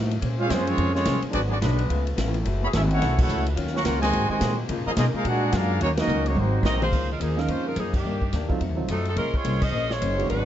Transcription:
Already playing: A2 D#3 F3 F#3 A3 D#4 F4 F#4
0.11 ride
0.20 A#2 G#3 A#3 C4 C#4 G#4, kick, ride
0.25 C5
0.38 G#3 C#4 F4 G#4 C5 F5
0.49 F#2 F3 G#3 A#3 C4 C#4 F4 G#4 C5, kick, snare, hi-hat pedal, ride
0.64 F3 G#3 C4 C#4, ride
0.68 G#3 F4 C#5
0.78 F2 A#3 C#4 G#4 C5, kick, ride
0.91 F3 G#3 C4 C#4 F4 C#5
0.95 snare
1.05 C2 A#3 C#4 G#4 C5, kick, snare, hi-hat pedal, ride
1.22 muted upright bass stroke, ride
1.30 G#1 G#2 D3 F#3 B3 D4 F#4 G#4 D5, kick, ride
1.34 B3 D4
1.48 F#3 B3 D4 F#4 G#4 D5
1.60 B1 G#2 D3 F#3 G#3 B3 D4 F#4 B4, kick, snare, hi-hat pedal, ride
1.64 D4
1.79 ride
1.89 C#2 C#3 A3 B3 F4, kick, ride
2.07 ride
2.16 A1 C#3 A3 B3 F4, kick, snare, hi-hat pedal, ride
2.34 ride
2.44 F#1 E3 F#3 G#3 A3 E4 F#4 G#4, kick, ride
2.62 B3 G#4 C#5 E5 B5
2.73 G#1 F#3 A3 C#4 E4 G#4 A4 E5, kick, snare, hi-hat pedal, ride
2.91 A3 C#4 E4 F#4 A4 C#5 F#5, ride
3.01 B1 F#3 A3 E4 G#4, kick, snare, ride
3.19 A3 C#4 E4 F#4 A4 C#5 F#5, kick, crash
3.28 C#2 F#3 A3 E4 G#4, hi-hat pedal
3.46 ride
3.56 D#2 D#3 F#3 C#4 F4, kick, ride
3.67 snare
3.73 F#3 A#3 C#4 A#4 F#5 C#6, snare
3.77 F5
3.84 C#2 D#3 F#3 A#3 C#4 F4 F#4 A#4 F#5, kick, snare, hi-hat pedal, ride
4.00 C3 D#3 G#3 F#4 C5 D#5 G#5, snare, ride
4.12 G#2 C3 F#3 G#3 A#3 C4 F#4, kick, ride
4.28 C3 D#3 G#3 F#4 C5 D#5 G#5, muted upright bass stroke
4.39 G#2 A#2 F#3 A#3 C4, kick, snare, hi-hat pedal, ride
4.67 C#3 F3 A#3 D#4 F4, kick, ride
4.78 A#2
4.86 G#2 A#2 F3 A#3 G#4 D#5 F5 A#5
4.95 B2 C#3 G#3 A#3 D#4 F4 G#4, kick, snare, hi-hat pedal, ride
4.99 D#5
5.14 G#3 A#3 D#4 F4 G#4 A#4 F5, muted upright bass stroke
5.23 A#2 D3 G#3 D4 F#4, kick, ride
5.28 D4 G#4 A#4 F#5
5.51 F#2 A#2 G#3 D4 F4 F#4, kick, snare, hi-hat pedal, ride
5.56 D4 G#4 A#4 F5
5.79 D#2 C#3 D#3 F#3 A#3 C#4 D#4 F#4 C#5, kick, ride
5.97 F#3 A#3 C#4 D#4 F#4 A#4 D#5, snare, ride
6.07 C#2 D#3 A#3 C#4 F#4, hi-hat pedal
6.26 F#3 A#3 C#4 D#4 F#4 C#5, ride
6.35 G#1 G#2 C3 D#3 F#3 G#3 A#3 C4 F#4, high tom
6.39 A#3 D#4 F#4 C5
6.63 A#1 G#2 F#3 A#3 C4 F#4 A#4 D#5, snare, hi-hat pedal
6.82 A#3 F4 G#4 C5, mid tom
6.91 C#2 C#3 F3 A#3 D#4, kick, crash
7.12 G#3 D#4 F4 A#4
7.19 D#2 C#3 F3 A#3 D#4 G#4, kick, hi-hat pedal, ride
7.36 F3 G#3 A#3 C#4 D#4 F4 A#4, snare
7.47 F2 C#3 F3 G#3 A#3 C#4 D#4 F4 C5, kick, ride
7.68 G#3 D#4 F4 A#4
7.75 F#2 C#3 F3 A#3 D#4, kick, hi-hat pedal, ride
7.79 F3 A#3 D#4 G#4
7.94 D#3 A#3 D4 G4, kick, crash
8.03 G2 C3 D#3 A#3 D4
8.22 kick
8.32 D#2 C3 D#3 A#3 D4, kick, snare, hi-hat pedal, ride
8.48 F#3 A3 C4 D#4 F4, kick
8.59 F2 F3 A3 D#4 F#4, kick, ride
8.69 D#2
8.76 C2 F#3 A3 C4 D#4 F4
8.88 F#2 F3 F#3 A3 C4 D#4 F#4 A4, kick, hi-hat pedal, ride
9.05 F#3 C4 D#4 A4, ride
9.15 C#2 G#3 A#3 C#4 F4 G#4 A#4 C5, kick, ride
9.34 G#3 C4 F4 C#5, muted upright bass stroke, kick
9.44 C2 A#3 C#4 G#4 C5, kick, hi-hat pedal, ride
9.62 C#4 G#4 C5 D#5, kick, crash
9.72 A#1 A#3 C#4 G#4 C5
9.90 G#3 F4 C5 C#5, snare
10.00 F#1 A#3 C#4 G#4 C5, kick, hi-hat pedal, ride
10.18 F#3 G#3 B3 D4 F#4, ride
10.28 G#1 G#2 F#3 G#3 B3 D4 F#4 B4, kick, ride

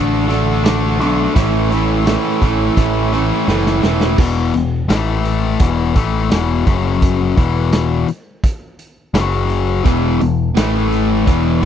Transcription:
Already playing: A1 D3 A3 D4 F#4
0.28 D3 A3 D4 F#4, snare, closed hi-hat
0.64 D3 A3 D4 F#4, snare, closed hi-hat, tambourine
0.68 F#4
0.99 B1 D3 A3 D4 F#4, closed hi-hat
1.04 A3
1.34 A1 A2 E3 A3 C#4 E4, kick, closed hi-hat
1.39 E4
1.69 A2 E3 A3 C#4 E4, closed hi-hat
1.73 C#4 E4
2.05 A2 E3 A3 C#4 E4, snare, closed hi-hat, tambourine
2.42 A1 A2 E3 A3 C#4 E4, kick, closed hi-hat
2.77 A1 A2 E3 A3 C#4 E4, kick, closed hi-hat
3.12 A2 E3 A3 C#4 E4, snare, closed hi-hat
3.48 F#1 A2 E3 A3 C#4 E4, snare
3.66 snare
3.82 E1 A2 E3 A3 C#4 E4, snare
4.01 snare
4.18 E1 E2 B2 E3, kick, crash
4.54 E1 E2 B2, closed hi-hat
4.88 A1 A2 E3 A3, snare, closed hi-hat, tambourine
5.25 closed hi-hat
5.60 E1 E2 B2 E3, kick, closed hi-hat
5.95 A1 A2 E3 A3, kick, closed hi-hat
6.30 E1 E2 B2 E3, snare, closed hi-hat, tambourine
6.67 F#1 F#2 C#3 F#3, kick, closed hi-hat
7.02 kick, closed hi-hat
7.37 E1 E2 B2 E3, kick, closed hi-hat
7.73 snare, closed hi-hat, tambourine
8.08 closed hi-hat
8.44 kick, closed hi-hat
8.79 closed hi-hat
9.14 F#1 F#2 C#3 F#3, snare, closed hi-hat, tambourine
9.50 closed hi-hat
9.85 E1 E2 B2 E3, kick, closed hi-hat
10.21 E1 E2 B2, closed hi-hat
10.57 A1 A2 E3 A3, snare, closed hi-hat, tambourine
10.92 closed hi-hat
11.27 E1 E2 B2 E3, kick, closed hi-hat
11.62 A2

